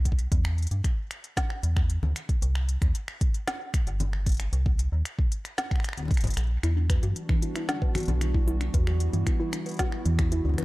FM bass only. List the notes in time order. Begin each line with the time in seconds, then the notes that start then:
Already playing: B1
0.32 E2
0.71 G2
1.63 E2
2.03 D2
2.42 C2
2.82 D#2
3.87 G1
4.53 C2
4.92 D#2
6.24 G1
6.37 A#1
6.63 E2
7.03 G2
8.08 B1
8.74 E2
9.13 G2
10.06 E2
10.45 D2